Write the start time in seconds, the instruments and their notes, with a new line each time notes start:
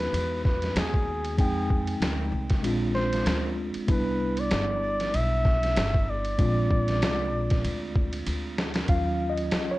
Already playing: upright bass D#2, tine electric piano G#3 B3 D#4 F#4, flugelhorn B4
0.00 snare, ride
0.13 upright bass E2, ride
0.45 flugelhorn B4, kick, snare
0.62 snare, ride
0.76 upright bass D#2, flugelhorn G#4, snare, hi-hat pedal, ride
0.94 kick
1.25 ride
1.38 upright bass F2, tine electric piano G#3 C4 D#4 G5, flugelhorn G#4, kick, ride
1.70 kick
1.87 ride
2.00 upright bass D2, snare, hi-hat pedal, ride
2.32 upright bass C2
2.50 kick, snare, ride
2.63 upright bass A#1, tine electric piano G#3 C4 D4 F4, ride
2.95 flugelhorn C5, snare
3.13 snare, ride
3.25 upright bass D2, snare, hi-hat pedal, ride
3.74 muted upright bass stroke, ride
3.87 upright bass C2, tine electric piano G3 B3 D4 E4, flugelhorn B4, kick, ride
4.37 flugelhorn D5, ride
4.51 upright bass G1, snare, hi-hat pedal, ride
5.00 snare, ride
5.14 upright bass B1, flugelhorn E5, ride
5.45 kick, snare
5.63 snare, ride
5.76 upright bass G1, snare, hi-hat pedal, ride
5.94 kick
6.10 flugelhorn D5
6.25 ride
6.38 upright bass A#1, tine electric piano G#3 C4 D4 F4, kick, ride
6.71 kick
6.88 snare, ride
7.02 upright bass C2, snare, hi-hat pedal, ride
7.33 upright bass A#1
7.50 kick, snare, ride
7.64 upright bass D2, ride
7.96 kick
8.13 ride
8.27 upright bass D2, hi-hat pedal, ride
8.58 snare
8.74 snare, ride
8.88 upright bass D#2, tine electric piano F#3 C#4 F4 F5, kick, ride
9.30 tine electric piano D#5
9.37 ride
9.51 snare, hi-hat pedal, ride
9.71 tine electric piano C#5